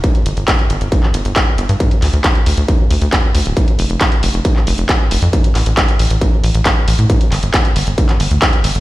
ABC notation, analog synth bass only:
X:1
M:4/4
L:1/16
Q:1/4=136
K:Gdor
V:1 name="Analog synth bass" clef=bass
z2 G,,, G,,, z2 G,,, G,,, z2 G,,, G,,, z2 G,,, G,, | z2 D,, D,, z2 D,, D,, z2 D,, D,, z2 D,, D,,, | z2 F,,, F,,, z2 F,,, F,,, z2 F,,, F,,, z2 F,,, F,, | z2 A,,, A,,, z2 A,,, A,,, z2 A,,, A,,, z2 A,,, A,, |
z2 G,,, G,,, z2 G,,, G,,, z2 G,,, D,, z2 G,,, G,,, |]